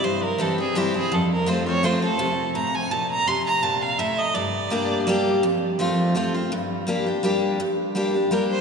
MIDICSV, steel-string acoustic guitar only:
0, 0, Header, 1, 2, 480
1, 0, Start_track
1, 0, Tempo, 359928
1, 49, Time_signature, 3, 2, 24, 8
1, 11480, End_track
2, 0, Start_track
2, 0, Title_t, "Steel-string acoustic guitar"
2, 0, Program_c, 0, 25
2, 52, Note_on_c, 0, 43, 86
2, 513, Note_on_c, 0, 52, 89
2, 527, Note_on_c, 0, 55, 93
2, 535, Note_on_c, 0, 60, 89
2, 543, Note_on_c, 0, 64, 90
2, 760, Note_off_c, 0, 64, 0
2, 768, Note_off_c, 0, 52, 0
2, 775, Note_off_c, 0, 55, 0
2, 776, Note_on_c, 0, 64, 61
2, 779, Note_off_c, 0, 60, 0
2, 803, Note_on_c, 0, 60, 51
2, 967, Note_off_c, 0, 43, 0
2, 996, Note_off_c, 0, 64, 0
2, 1004, Note_on_c, 0, 52, 91
2, 1005, Note_off_c, 0, 60, 0
2, 1015, Note_on_c, 0, 55, 106
2, 1021, Note_on_c, 0, 60, 104
2, 1036, Note_on_c, 0, 64, 103
2, 1240, Note_off_c, 0, 64, 0
2, 1254, Note_off_c, 0, 52, 0
2, 1256, Note_on_c, 0, 64, 71
2, 1259, Note_off_c, 0, 55, 0
2, 1262, Note_off_c, 0, 60, 0
2, 1284, Note_on_c, 0, 60, 55
2, 1476, Note_off_c, 0, 64, 0
2, 1489, Note_on_c, 0, 41, 90
2, 1491, Note_off_c, 0, 60, 0
2, 1952, Note_on_c, 0, 53, 89
2, 1965, Note_on_c, 0, 57, 80
2, 1971, Note_on_c, 0, 60, 93
2, 1982, Note_on_c, 0, 65, 91
2, 2201, Note_off_c, 0, 65, 0
2, 2208, Note_off_c, 0, 53, 0
2, 2215, Note_off_c, 0, 57, 0
2, 2217, Note_on_c, 0, 65, 54
2, 2218, Note_off_c, 0, 60, 0
2, 2247, Note_on_c, 0, 60, 54
2, 2406, Note_off_c, 0, 41, 0
2, 2437, Note_off_c, 0, 65, 0
2, 2442, Note_on_c, 0, 53, 91
2, 2446, Note_off_c, 0, 60, 0
2, 2451, Note_on_c, 0, 57, 106
2, 2462, Note_on_c, 0, 60, 96
2, 2470, Note_on_c, 0, 65, 104
2, 2681, Note_off_c, 0, 65, 0
2, 2693, Note_off_c, 0, 53, 0
2, 2697, Note_on_c, 0, 65, 62
2, 2698, Note_off_c, 0, 57, 0
2, 2703, Note_off_c, 0, 60, 0
2, 2726, Note_on_c, 0, 60, 48
2, 2918, Note_off_c, 0, 65, 0
2, 2920, Note_on_c, 0, 48, 97
2, 2932, Note_off_c, 0, 60, 0
2, 3401, Note_on_c, 0, 45, 82
2, 3842, Note_off_c, 0, 48, 0
2, 3865, Note_off_c, 0, 45, 0
2, 3884, Note_on_c, 0, 46, 89
2, 4346, Note_off_c, 0, 46, 0
2, 4368, Note_on_c, 0, 48, 89
2, 4838, Note_on_c, 0, 46, 86
2, 5286, Note_off_c, 0, 48, 0
2, 5303, Note_off_c, 0, 46, 0
2, 5322, Note_on_c, 0, 45, 101
2, 5785, Note_off_c, 0, 45, 0
2, 5798, Note_on_c, 0, 43, 93
2, 6272, Note_on_c, 0, 55, 77
2, 6284, Note_on_c, 0, 58, 89
2, 6290, Note_on_c, 0, 62, 93
2, 6302, Note_on_c, 0, 67, 86
2, 6721, Note_off_c, 0, 43, 0
2, 6740, Note_off_c, 0, 55, 0
2, 6746, Note_off_c, 0, 58, 0
2, 6749, Note_off_c, 0, 62, 0
2, 6755, Note_off_c, 0, 67, 0
2, 6759, Note_on_c, 0, 55, 100
2, 6769, Note_on_c, 0, 58, 107
2, 6779, Note_on_c, 0, 62, 94
2, 6789, Note_on_c, 0, 67, 115
2, 7223, Note_off_c, 0, 55, 0
2, 7228, Note_off_c, 0, 58, 0
2, 7233, Note_off_c, 0, 62, 0
2, 7238, Note_off_c, 0, 67, 0
2, 7244, Note_on_c, 0, 41, 101
2, 7720, Note_on_c, 0, 53, 82
2, 7730, Note_on_c, 0, 57, 93
2, 7738, Note_on_c, 0, 60, 98
2, 7748, Note_on_c, 0, 65, 107
2, 8163, Note_off_c, 0, 41, 0
2, 8183, Note_off_c, 0, 53, 0
2, 8188, Note_off_c, 0, 57, 0
2, 8192, Note_off_c, 0, 60, 0
2, 8198, Note_off_c, 0, 65, 0
2, 8199, Note_on_c, 0, 53, 84
2, 8207, Note_on_c, 0, 57, 97
2, 8219, Note_on_c, 0, 60, 103
2, 8227, Note_on_c, 0, 65, 108
2, 8444, Note_off_c, 0, 65, 0
2, 8451, Note_off_c, 0, 53, 0
2, 8455, Note_off_c, 0, 57, 0
2, 8460, Note_on_c, 0, 65, 70
2, 8461, Note_off_c, 0, 60, 0
2, 8489, Note_on_c, 0, 60, 51
2, 8679, Note_off_c, 0, 65, 0
2, 8692, Note_on_c, 0, 43, 94
2, 8693, Note_off_c, 0, 60, 0
2, 9157, Note_on_c, 0, 55, 86
2, 9171, Note_on_c, 0, 58, 95
2, 9180, Note_on_c, 0, 62, 92
2, 9190, Note_on_c, 0, 67, 92
2, 9405, Note_off_c, 0, 67, 0
2, 9410, Note_off_c, 0, 55, 0
2, 9417, Note_off_c, 0, 58, 0
2, 9421, Note_off_c, 0, 62, 0
2, 9421, Note_on_c, 0, 67, 55
2, 9445, Note_on_c, 0, 62, 53
2, 9606, Note_off_c, 0, 43, 0
2, 9639, Note_off_c, 0, 67, 0
2, 9642, Note_on_c, 0, 55, 99
2, 9646, Note_off_c, 0, 62, 0
2, 9654, Note_on_c, 0, 58, 95
2, 9662, Note_on_c, 0, 62, 100
2, 9674, Note_on_c, 0, 67, 103
2, 10103, Note_off_c, 0, 55, 0
2, 10109, Note_off_c, 0, 58, 0
2, 10113, Note_off_c, 0, 62, 0
2, 10120, Note_off_c, 0, 67, 0
2, 10132, Note_on_c, 0, 43, 93
2, 10600, Note_on_c, 0, 55, 83
2, 10609, Note_on_c, 0, 58, 84
2, 10620, Note_on_c, 0, 62, 91
2, 10627, Note_on_c, 0, 67, 93
2, 10842, Note_off_c, 0, 67, 0
2, 10851, Note_off_c, 0, 55, 0
2, 10856, Note_off_c, 0, 58, 0
2, 10858, Note_on_c, 0, 67, 57
2, 10861, Note_off_c, 0, 62, 0
2, 10884, Note_on_c, 0, 62, 53
2, 11046, Note_off_c, 0, 43, 0
2, 11076, Note_off_c, 0, 67, 0
2, 11081, Note_on_c, 0, 55, 93
2, 11085, Note_off_c, 0, 62, 0
2, 11092, Note_on_c, 0, 58, 92
2, 11101, Note_on_c, 0, 62, 96
2, 11110, Note_on_c, 0, 67, 101
2, 11480, Note_off_c, 0, 55, 0
2, 11480, Note_off_c, 0, 58, 0
2, 11480, Note_off_c, 0, 62, 0
2, 11480, Note_off_c, 0, 67, 0
2, 11480, End_track
0, 0, End_of_file